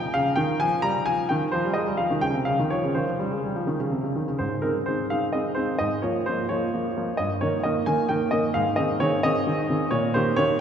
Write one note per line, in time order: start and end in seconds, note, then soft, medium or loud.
0.00 0.14 G5 medium
0.14 0.31 C#3 medium
0.14 0.34 F5 medium
0.36 0.53 D#3 medium
0.36 0.57 G5 medium
0.60 0.77 F3 medium
0.60 0.81 G#5 medium
0.82 1.00 G3 soft
0.82 1.03 A#5 medium
1.06 1.23 F3 medium
1.06 1.27 G#5 medium
1.29 1.47 D#3 medium
1.29 1.43 G5 medium
1.52 1.64 F3 medium
1.52 1.73 C5 medium
1.65 1.75 G3 soft
1.74 1.86 G#3 soft
1.74 1.96 D#5 medium
1.87 1.98 G3 soft
1.97 2.10 F3 medium
1.97 2.22 F5 medium
2.10 2.22 D#3 soft
2.21 2.34 C#3 soft
2.21 2.36 G5 medium
2.34 2.46 C3 soft
2.45 2.58 C#3 soft
2.45 2.60 F5 medium
2.59 2.71 D#3 soft
2.70 2.82 F3 soft
2.70 2.92 C#5 medium
2.83 2.95 C#3 soft
2.95 3.07 D#3 soft
2.95 3.68 C5 medium
3.08 3.19 F3 soft
3.19 3.31 G3 soft
3.32 3.43 G#3 soft
3.44 3.55 G3 soft
3.56 3.67 F3 soft
3.67 3.79 D#3 soft
3.80 3.91 C#3 soft
3.91 4.03 C3 soft
4.04 4.15 C#3 soft
4.16 4.28 D#3 soft
4.28 4.39 C#3 soft
4.39 4.63 G#2 soft
4.39 4.60 C5 medium
4.62 4.80 G#3 soft
4.62 4.80 C4 soft
4.62 4.80 D#4 soft
4.62 4.76 A#4 medium
4.86 5.04 G#3 soft
4.86 5.04 C4 soft
4.86 5.05 D#4 soft
4.86 5.10 C5 medium
5.10 5.27 G#3 soft
5.10 5.28 C4 soft
5.10 5.28 D#4 soft
5.10 5.24 F5 medium
5.33 5.51 G#3 soft
5.33 5.51 C4 soft
5.33 5.51 D#4 soft
5.33 5.56 D#5 medium
5.55 5.73 G#3 soft
5.55 5.73 C4 soft
5.55 5.74 D#4 soft
5.55 5.79 C5 medium
5.79 6.02 G#2 soft
5.79 6.02 D#5 medium
6.02 6.19 F3 soft
6.02 6.20 A#3 soft
6.02 6.20 F4 soft
6.02 6.26 C#5 soft
6.26 6.44 F3 soft
6.26 6.44 A#3 soft
6.26 6.44 F4 soft
6.26 6.47 C5 medium
6.49 6.67 F3 soft
6.49 6.67 A#3 soft
6.49 6.67 F4 soft
6.49 7.19 C#5 medium
6.74 6.90 F3 soft
6.74 6.90 A#3 soft
6.74 6.90 F4 soft
6.96 7.13 F3 soft
6.96 7.13 A#3 soft
6.96 7.13 F4 soft
7.17 7.41 G2 soft
7.17 7.32 D#5 medium
7.41 7.59 D#3 soft
7.41 7.59 A#3 soft
7.41 7.59 A#4 soft
7.41 7.62 C#5 medium
7.63 7.81 D#3 soft
7.63 7.81 A#3 soft
7.63 7.82 A#4 soft
7.63 7.85 D#5 medium
7.86 8.04 D#3 soft
7.86 8.04 A#3 soft
7.86 8.05 A#4 soft
7.86 8.08 G#5 medium
8.09 8.26 D#3 soft
8.09 8.27 A#3 soft
8.09 8.27 A#4 soft
8.09 8.30 G5 medium
8.31 8.49 D#3 soft
8.31 8.49 A#3 soft
8.31 8.50 A#4 soft
8.31 8.53 D#5 medium
8.54 8.78 G#2 soft
8.54 8.78 F5 medium
8.76 8.95 D#3 soft
8.76 8.94 C4 soft
8.76 8.95 G#4 soft
8.76 9.00 D#5 medium
9.00 9.17 D#3 soft
9.00 9.18 C4 soft
9.00 9.18 G#4 soft
9.00 9.23 C#5 medium
9.23 9.41 D#3 soft
9.23 9.41 C4 soft
9.23 9.41 G#4 soft
9.23 9.91 D#5 medium
9.47 9.63 D#3 soft
9.47 9.63 C4 soft
9.47 9.64 G#4 soft
9.70 9.86 D#3 soft
9.70 9.86 C4 soft
9.70 9.86 G#4 soft
9.91 10.13 A#2 medium
9.91 10.14 C#5 medium
10.14 10.31 D#3 soft
10.14 10.32 A#3 soft
10.14 10.32 G4 soft
10.14 10.37 C5 medium
10.36 10.54 D#3 soft
10.36 10.54 A#3 soft
10.36 10.54 G4 soft
10.36 10.57 C#5 medium